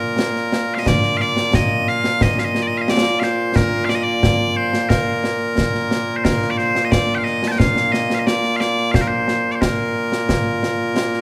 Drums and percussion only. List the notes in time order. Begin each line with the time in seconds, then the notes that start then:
0.19 snare
0.36 snare
0.52 snare
0.86 concert bass drum, snare
1.03 snare
1.20 snare
1.37 snare
1.54 concert bass drum, snare
1.87 snare
2.04 snare
2.21 concert bass drum, snare
2.38 snare
2.55 snare
2.88 snare
3.05 snare
3.22 snare
3.56 concert bass drum, snare
3.89 snare
4.23 concert bass drum, snare
4.73 snare
4.90 concert bass drum, snare
5.24 snare
5.58 concert bass drum, snare
5.74 snare
5.91 snare
6.25 concert bass drum, snare
6.42 snare
6.59 snare
6.75 snare
6.92 concert bass drum, snare
7.26 snare
7.43 snare
7.60 concert bass drum, snare
7.76 snare
7.94 snare
8.10 snare
8.27 snare
8.44 snare
8.61 snare
8.77 snare
8.94 concert bass drum, snare
9.28 snare
9.62 concert bass drum, snare
10.12 snare
10.29 concert bass drum, snare
10.63 snare
10.97 snare
11.13 snare